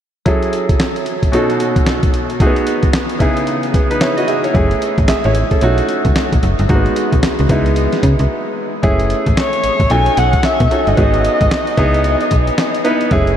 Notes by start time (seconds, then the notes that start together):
0.26 F#3 C#4 E4 G#4 A4, kick, closed hi-hat
0.43 closed hi-hat
0.53 closed hi-hat
0.69 kick, closed hi-hat
0.80 snare, clap, closed hi-hat
0.96 closed hi-hat
1.06 closed hi-hat
1.23 kick, closed hi-hat
1.32 B2 C#4 D#4 F#4 A4, closed hi-hat
1.50 closed hi-hat
1.60 closed hi-hat
1.76 kick, closed hi-hat
1.86 snare, clap, closed hi-hat
2.03 kick, closed hi-hat
2.14 closed hi-hat
2.30 closed hi-hat
2.40 A3 D#4 F#4 G#4, kick, closed hi-hat
2.47 B3
2.56 closed hi-hat
2.67 closed hi-hat
2.83 kick, closed hi-hat
2.93 snare, clap, closed hi-hat
3.09 closed hi-hat
3.19 C#3 B3 D#4 E4 G#4, kick, closed hi-hat
3.37 closed hi-hat
3.47 closed hi-hat
3.63 closed hi-hat
3.74 B3 G#4, kick, closed hi-hat
3.90 D#4 B4, closed hi-hat
4.01 E4 C#5, snare, clap, closed hi-hat
4.17 F#4 D#5, closed hi-hat
4.27 G#4 E5, closed hi-hat
4.44 E4 C#5, closed hi-hat
4.53 F#1 A3 C#4 E4 G#4, kick, closed hi-hat
4.71 closed hi-hat
4.82 closed hi-hat
4.98 A1, kick, closed hi-hat
5.08 A1 G#4 E5, snare, clap, closed hi-hat
5.24 A1 E4 C#5, closed hi-hat
5.35 closed hi-hat
5.51 C#4 A4, kick, closed hi-hat
5.61 B1 A3 C#4 D#4 F#4, closed hi-hat
5.78 closed hi-hat
5.89 closed hi-hat
6.05 C#2, kick, closed hi-hat
6.16 snare, clap, closed hi-hat
6.32 B1, kick, closed hi-hat
6.43 F#1, closed hi-hat
6.59 G1, closed hi-hat
6.69 G#1 G#3 A#3 D#4 F#4, kick, closed hi-hat
6.75 B3
6.86 closed hi-hat
6.96 closed hi-hat
7.12 B1, kick, closed hi-hat
7.23 snare, clap, closed hi-hat
7.39 C#2, closed hi-hat
7.49 C#2 G#3 B3 D#4 E4, kick, closed hi-hat
7.66 closed hi-hat
7.76 closed hi-hat
7.92 snare, closed hi-hat
8.03 C#3, kick, closed hi-hat
8.19 C#2, closed hi-hat
8.83 F#1 A3 C#4 E4 G#4, kick, closed hi-hat
9.00 closed hi-hat
9.10 closed hi-hat
9.26 A1, kick, closed hi-hat
9.37 C#5, snare, clap, closed hi-hat
9.53 closed hi-hat
9.64 A1, closed hi-hat
9.80 A1, kick, closed hi-hat
9.90 B1 C#4 D#4 F#4 A4 G#5, closed hi-hat
10.06 closed hi-hat
10.17 B1 F#5, closed hi-hat
10.33 kick, closed hi-hat
10.43 E5, snare, clap, closed hi-hat
10.60 B2, kick, closed hi-hat
10.71 C#4 D#4 F#4 A4, closed hi-hat
10.87 G1 D#5, closed hi-hat
10.97 G#1 B3 D#4 F#4 G#4, kick, closed hi-hat
11.14 closed hi-hat
11.25 closed hi-hat
11.41 G#1, kick, closed hi-hat
11.51 snare, clap, closed hi-hat
11.67 closed hi-hat
11.77 C#2 B3 D#4 E4 G#4, kick, closed hi-hat
11.94 closed hi-hat
12.04 closed hi-hat
12.21 closed hi-hat
12.31 B1, kick, closed hi-hat
12.47 closed hi-hat
12.58 snare, clap, closed hi-hat
12.75 closed hi-hat
12.84 B3 D#4 E4 B4, closed hi-hat
13.01 closed hi-hat
13.11 F#1 A3 C#4 E4 G#4, kick, closed hi-hat
13.27 closed hi-hat